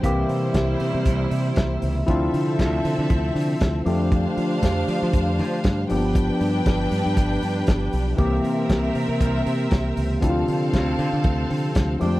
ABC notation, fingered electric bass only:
X:1
M:4/4
L:1/16
Q:"Swing 16ths" 1/4=118
K:Cmix
V:1 name="Fingered electric bass" clef=bass
C,,2 C,2 C,,2 C, C, C,,2 C,2 C,,2 _D,,2 | D,,2 D,2 D,,2 D, D, D,,2 D,2 D,,2 F,,2- | F,,2 F,2 F,,2 F, F, F,,2 F,2 G,,2 G,,,2- | G,,,2 G,,2 G,,,2 G,, G,, G,,,2 G,,2 G,,,2 =B,,,2 |
C,,2 C,2 C,,2 C, C, C,,2 C,2 C,,2 _D,,2 | D,,2 D,2 D,,2 D, D, D,,2 D,2 D,,2 F,,2 |]